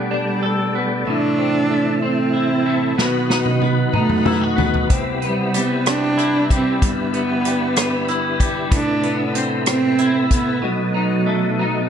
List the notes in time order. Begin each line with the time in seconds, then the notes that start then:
Already playing: B2 G3 A3 B3 D4
0.11 G3 D4
0.43 A4
0.75 B3
1.07 A2 C3 E3 D4 E4
1.38 C4
1.71 A3
2.02 C4
2.33 E4
2.66 A3
2.98 B2 D#3 F#3 B3 F#4 B4, snare
3.30 D#4, snare
3.46 high tom
3.61 B3, high tom
3.93 A3 D#4, mid tom
4.09 mid tom
4.25 E4, mid tom
4.41 F#4
4.56 B3, floor tom
4.74 floor tom
4.90 C3 G3 E4, kick, closed hi-hat
5.22 G3 B3, closed hi-hat
5.54 G3 B3, closed hi-hat
5.86 D4, cross-stick, closed hi-hat
6.18 E4, cross-stick, closed hi-hat
6.50 G3 C4, kick, closed hi-hat
6.82 G2 D3 B3, kick, closed hi-hat
7.14 B3, closed hi-hat
7.45 G3, closed hi-hat
7.76 B3, cross-stick, closed hi-hat
8.08 E4, cross-stick, closed hi-hat
8.40 G3, kick, closed hi-hat
8.72 A2 C3 A3 D4, kick, closed hi-hat
9.03 B3, closed hi-hat
9.35 C4, closed hi-hat
9.66 C4, cross-stick, closed hi-hat
9.98 E4, closed hi-hat
10.31 B3, kick, closed hi-hat
10.62 B2 F#3 D#4
10.94 D#4
11.26 A3
11.59 D#4